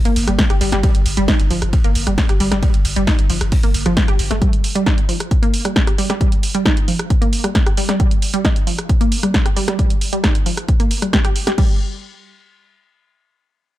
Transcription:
0.05 sub bass G1, synth arpeggio sound A#3, closed hi-hat
0.16 sub bass G1, open hi-hat, ride
0.28 sub bass G1, synth arpeggio sound G3, cross-stick, closed hi-hat
0.39 kick, snare, closed hi-hat, ride
0.50 sub bass G1, synth arpeggio sound G4, cross-stick, closed hi-hat, ride
0.61 sub bass G1, synth arpeggio sound G3, open hi-hat, ride
0.72 sub bass G1, synth arpeggio sound G3, cross-stick, snare, closed hi-hat
0.83 synth arpeggio sound G3, kick, closed hi-hat, ride
0.95 sub bass G1, closed hi-hat
1.06 sub bass G1, open hi-hat, ride
1.17 sub bass G1, synth arpeggio sound G3, snare, closed hi-hat
1.28 synth arpeggio sound D#4, kick, snare, closed hi-hat, ride
1.40 sub bass G1, snare, closed hi-hat
1.50 sub bass G1, synth arpeggio sound F3, open hi-hat, ride
1.62 sub bass G1, cross-stick, closed hi-hat
1.73 kick, closed hi-hat, ride
1.84 sub bass G1, synth arpeggio sound A#3, closed hi-hat
1.95 sub bass G1, open hi-hat, ride
2.07 sub bass G1, synth arpeggio sound G3, cross-stick, closed hi-hat
2.18 kick, snare, closed hi-hat, ride
2.29 sub bass G1, synth arpeggio sound G4, cross-stick, closed hi-hat
2.40 sub bass G1, synth arpeggio sound G3, open hi-hat, ride
2.51 sub bass G1, synth arpeggio sound G3, cross-stick, snare, closed hi-hat
2.63 synth arpeggio sound G3, kick, closed hi-hat, ride
2.74 sub bass G1, closed hi-hat, ride
2.85 sub bass G1, open hi-hat, ride
2.96 sub bass G1, synth arpeggio sound G3, closed hi-hat
3.07 synth arpeggio sound D#4, kick, snare, closed hi-hat, ride
3.19 sub bass G1, closed hi-hat
3.30 sub bass G1, synth arpeggio sound F3, open hi-hat, ride
3.41 sub bass G1, cross-stick, closed hi-hat, ride
3.52 kick, closed hi-hat, open hi-hat
3.63 sub bass G1, synth arpeggio sound A#3, closed hi-hat
3.74 sub bass G1, open hi-hat, ride
3.86 sub bass G1, synth arpeggio sound F3, cross-stick, closed hi-hat
3.97 synth arpeggio sound G3, kick, snare, closed hi-hat, ride
4.08 sub bass G1, synth arpeggio sound G4, cross-stick, closed hi-hat, ride
4.19 sub bass G1, open hi-hat, ride
4.31 sub bass G1, synth arpeggio sound A3, cross-stick, snare, closed hi-hat
4.42 synth arpeggio sound G3, kick, closed hi-hat
4.53 closed hi-hat
4.64 open hi-hat
4.75 synth arpeggio sound G3, closed hi-hat
4.86 synth arpeggio sound D#4, kick, snare, closed hi-hat
4.98 closed hi-hat
5.09 synth arpeggio sound F3, open hi-hat
5.20 cross-stick, closed hi-hat
5.31 kick, closed hi-hat
5.43 synth arpeggio sound A#3, closed hi-hat
5.54 open hi-hat
5.65 synth arpeggio sound G3, cross-stick, closed hi-hat
5.76 kick, snare, closed hi-hat
5.87 synth arpeggio sound G4, cross-stick, closed hi-hat
5.98 synth arpeggio sound G3, open hi-hat
6.10 synth arpeggio sound G3, cross-stick, snare, closed hi-hat
6.21 synth arpeggio sound G3, kick, closed hi-hat
6.32 closed hi-hat
6.43 open hi-hat
6.55 synth arpeggio sound G3, closed hi-hat
6.66 synth arpeggio sound D#4, kick, snare, closed hi-hat
6.77 closed hi-hat
6.88 synth arpeggio sound F3, open hi-hat
6.99 cross-stick, closed hi-hat
7.10 kick, closed hi-hat
7.22 synth arpeggio sound A#3, closed hi-hat
7.33 open hi-hat
7.44 synth arpeggio sound G3, cross-stick, closed hi-hat
7.55 kick, snare, closed hi-hat
7.67 synth arpeggio sound G4, cross-stick, closed hi-hat
7.77 synth arpeggio sound G3, open hi-hat
7.89 synth arpeggio sound G3, cross-stick, snare, closed hi-hat
8.00 synth arpeggio sound G3, kick, closed hi-hat
8.11 closed hi-hat
8.22 open hi-hat
8.34 synth arpeggio sound G3, closed hi-hat
8.45 synth arpeggio sound D#4, kick, snare, closed hi-hat
8.56 closed hi-hat
8.67 synth arpeggio sound F3, open hi-hat
8.79 cross-stick, closed hi-hat
8.89 kick, closed hi-hat
9.01 synth arpeggio sound A#3, closed hi-hat
9.12 open hi-hat
9.23 synth arpeggio sound G3, cross-stick, closed hi-hat
9.34 kick, snare, closed hi-hat
9.46 synth arpeggio sound G4, cross-stick, closed hi-hat
9.56 synth arpeggio sound G3, open hi-hat
9.68 synth arpeggio sound G3, cross-stick, snare, closed hi-hat
9.79 synth arpeggio sound G3, kick, closed hi-hat
9.90 closed hi-hat
10.01 open hi-hat
10.13 synth arpeggio sound G3, closed hi-hat
10.24 synth arpeggio sound D#4, kick, cross-stick, snare, closed hi-hat
10.35 closed hi-hat
10.46 synth arpeggio sound F3, open hi-hat
10.57 cross-stick, closed hi-hat
10.68 kick, closed hi-hat
10.80 synth arpeggio sound A#3, closed hi-hat
10.91 open hi-hat
11.02 synth arpeggio sound G3, cross-stick, closed hi-hat
11.13 synth arpeggio sound G4, kick, snare, closed hi-hat
11.25 synth arpeggio sound G4, cross-stick, closed hi-hat
11.36 open hi-hat
11.47 synth arpeggio sound G4, cross-stick, snare, closed hi-hat
11.58 synth arpeggio sound G3, kick, crash

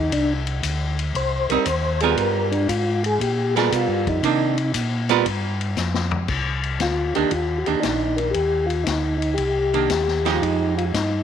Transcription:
Already playing: tonewheel organ D#2 D#4
0.11 tonewheel organ C2 D4, kick, ride
0.47 ride
0.63 tonewheel organ D2, kick, hi-hat pedal, ride
0.99 ride
1.15 tonewheel organ C2 C5, kick, ride
1.49 tonewheel organ C2 A#4, hollow-body jazz guitar G3 C4 D#4, ride
1.65 tonewheel organ D#2 C5, kick, hi-hat pedal, ride
2.00 hollow-body jazz guitar G3 B3 F4 A#4, tonewheel organ G#4, ride
2.17 tonewheel organ G2 A#4, kick, ride
2.51 tonewheel organ D4, ride
2.69 tonewheel organ G#2 F4, kick, hi-hat pedal, ride
3.04 tonewheel organ G#4, ride
3.20 tonewheel organ A#2 G4, kick, ride
3.56 hollow-body jazz guitar G3 B3 F4 A#4, tonewheel organ G#4, snare, ride
3.72 tonewheel organ B2, kick, hi-hat pedal, ride
3.76 tonewheel organ F4
3.88 tonewheel organ G2
4.05 tonewheel organ F2, kick, ride
4.09 tonewheel organ D#4
4.23 tonewheel organ C3, hollow-body jazz guitar D#3 A#3 D4, kick, ride
4.58 ride
4.74 tonewheel organ A#2, kick, hi-hat pedal, ride
5.09 hollow-body jazz guitar G3 B3 F4 A#4, ride
5.26 tonewheel organ G2, kick, ride
5.61 ride
5.77 tonewheel organ F2, snare, hi-hat pedal
5.94 snare
6.11 floor tom
6.28 tonewheel organ C2, kick, crash
6.63 ride
6.80 tonewheel organ D2 F4, kick, snare, hi-hat pedal, ride
7.15 tonewheel organ D2 G4, hollow-body jazz guitar D#3 A#3 D4, ride
7.31 tonewheel organ D#2 F4, kick, ride
7.58 tonewheel organ F#4
7.66 tonewheel organ D#2 G4, hollow-body jazz guitar D#3 A#3 D4, ride
7.80 tonewheel organ A#1 D4 D#4, kick, snare, hi-hat pedal, ride
8.17 tonewheel organ A#4, ride
8.31 tonewheel organ D#2 G4, kick, ride
8.66 tonewheel organ F4, ride
8.84 tonewheel organ D2 D#4, kick, snare, hi-hat pedal, ride
9.18 tonewheel organ D#4, ride
9.34 tonewheel organ G4, ride
9.38 tonewheel organ C2, kick
9.74 hollow-body jazz guitar D#3 A#3 D4, ride
9.89 tonewheel organ D#2, kick, snare, hi-hat pedal, ride
10.08 snare
10.25 hollow-body jazz guitar F3 G#3 D#4 G4, tonewheel organ F4, snare, ride
10.42 tonewheel organ F2 D#4, kick, ride
10.78 tonewheel organ F4, ride
10.94 tonewheel organ G2 D#4, kick, snare, hi-hat pedal, ride

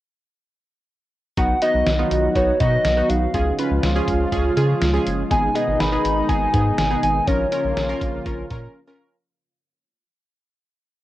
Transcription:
1.37 analog synth bass B1, analog synth pad D#3 F#3 B3 F#4, analog polysynth B3 D#4 F#4, soft synth lead F#5, kick, closed hi-hat
1.62 analog polysynth B3 D#4 F#4, soft synth lead D#5, closed hi-hat
1.74 analog synth bass B1
1.87 analog synth bass B1, snare, closed hi-hat
1.99 analog polysynth B3 D#4 F4
2.11 analog synth bass B1, soft synth lead D#5, closed hi-hat
2.35 analog synth bass B1, analog polysynth B3 D#4 F#4, soft synth lead C#5, kick, closed hi-hat
2.60 analog synth bass B2, analog polysynth B3 D#4 F#4, soft synth lead D#5, kick, closed hi-hat
2.85 analog synth bass B1, snare, closed hi-hat
2.97 analog polysynth B3 D#4 F#4
3.09 analog synth bass B1, soft synth lead F5, closed hi-hat
3.34 analog synth bass C#2, analog synth pad C#3 F3 G#3 F4, analog polysynth C#4 F4 G#4, kick, closed hi-hat
3.59 analog polysynth C#4 F4 B4, closed hi-hat
3.71 analog synth bass C#2
3.83 analog synth bass C#2, snare, closed hi-hat
3.96 analog polysynth C#4 F4 G#4
4.08 analog synth bass C#2, kick, closed hi-hat
4.32 analog synth bass C#2, analog polysynth C#4 F4 G#4, kick, closed hi-hat
4.57 analog synth bass C#3, analog polysynth C#4 F4 G#4, closed hi-hat
4.82 analog synth bass C#2, snare, closed hi-hat
4.94 analog polysynth C#4 F4 G#4
5.06 analog synth bass F#1, closed hi-hat
5.31 analog synth bass G#1, analog synth pad B2 D#3 D#4, analog polysynth B3 D#4 G#4, soft synth lead G#5, kick, closed hi-hat
5.55 analog polysynth B3 D#4 G#4, soft synth lead D#5, closed hi-hat
5.68 analog synth bass G#1
5.80 analog synth bass G#1, soft synth lead B5, snare, closed hi-hat
5.92 analog polysynth B3 D#4 G#4
6.05 analog synth bass G#1, closed hi-hat
6.29 analog synth bass G#1, analog polysynth B3 D#4 G#4, soft synth lead G#5, kick, closed hi-hat
6.54 analog synth bass G#2, analog polysynth B3 D#4 G#4, kick, closed hi-hat
6.78 analog synth bass G#1, soft synth lead G#5, snare, closed hi-hat
6.91 analog polysynth B3 D#4 G#4
7.03 analog synth bass G#1, soft synth lead G#5, closed hi-hat
7.27 analog synth bass A#1, analog synth pad C#3 F3 A#3 F4, analog polysynth C#4 F4 A#4, soft synth lead C#5, kick, closed hi-hat
7.52 analog polysynth C#4 F4 A#4, closed hi-hat
7.64 analog synth bass A#1
7.76 analog synth bass A#1, snare, closed hi-hat
7.89 analog polysynth C#4 F4 A#4
8.01 analog synth bass A#1, kick, closed hi-hat
8.26 analog synth bass A#1, analog polysynth C#4 F4 A#4, kick, closed hi-hat
8.50 analog synth bass A#2, analog polysynth C#4 F4 A#4, kick, closed hi-hat
8.87 analog polysynth C#4 F4 A#4

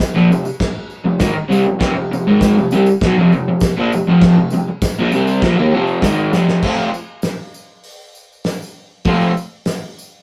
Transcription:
0.00 kick, snare, tambourine
0.15 overdriven electric guitar A#2 F3, tambourine
0.30 overdriven electric guitar F2 C3, tambourine
0.45 muted overdriven electric guitar stroke, tambourine
0.60 kick, snare, crash
0.90 tambourine
1.05 overdriven electric guitar F2 C3
1.19 overdriven electric guitar G#2 D#3, kick, snare, tambourine, crash
1.34 muted overdriven electric guitar stroke
1.49 overdriven electric guitar C3 G3, tambourine
1.66 overdriven electric guitar F2 C3
1.79 overdriven electric guitar F2 C3, kick, snare, tambourine, crash
1.95 overdriven electric guitar F2 C3
2.12 overdriven electric guitar F2 C3, tambourine
2.27 overdriven electric guitar G#2 D#3 G#3
2.41 kick, snare, tambourine, crash
2.58 overdriven electric guitar F2 C3, tambourine
2.71 overdriven electric guitar C3 G3, tambourine
2.86 muted overdriven electric guitar stroke, tambourine
3.01 overdriven electric guitar B2 F#3, kick, snare, crash
3.18 overdriven electric guitar F2 C3
3.32 overdriven electric guitar F2 C3, tambourine
3.48 overdriven electric guitar F2 C3
3.60 kick, snare, tambourine, crash
3.77 overdriven electric guitar A#2 F3
3.92 overdriven electric guitar F2 C3, tambourine
4.07 overdriven electric guitar F2 C3 F3
4.22 kick, snare, tambourine, crash
4.37 overdriven electric guitar F2 C3
4.50 overdriven electric guitar F2 C3, tambourine
4.68 muted overdriven electric guitar stroke
4.82 kick, snare, tambourine, crash
4.99 overdriven electric guitar A#2 F3
5.12 overdriven electric guitar C3 G3 C4, tambourine
5.27 tambourine
5.42 overdriven electric guitar A#2 F3, kick, snare, crash
5.58 overdriven electric guitar D#3 A#3
5.73 overdriven electric guitar F2 C3 F3
5.87 tambourine
6.02 overdriven electric guitar G#2 D#3 G#3, kick, snare, tambourine, crash
6.33 overdriven electric guitar F2 C3 F3, snare, tambourine
6.48 snare
6.62 overdriven electric guitar F3 A3 C4 F4, kick, crash, tambourine
6.77 tambourine
6.94 tambourine
7.22 snare, open hi-hat, tambourine
7.54 tambourine
7.84 open hi-hat
8.15 tambourine
8.32 tambourine
8.44 snare, open hi-hat, tambourine
8.62 tambourine
9.05 overdriven electric guitar F3 A3 C4 F4, kick, open hi-hat, tambourine
9.20 tambourine
9.37 tambourine
9.66 snare, open hi-hat, tambourine
9.99 tambourine

